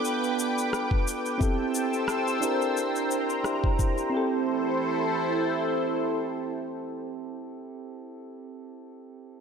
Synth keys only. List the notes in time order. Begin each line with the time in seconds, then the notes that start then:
Already playing: B3 D4 F4 A4
1.38 C4 E4 G4
1.42 A4
2.41 D4 E4 G4
2.45 A#4
3.44 D4 E4 G4 C5
4.10 C4 E4
4.14 G4 A4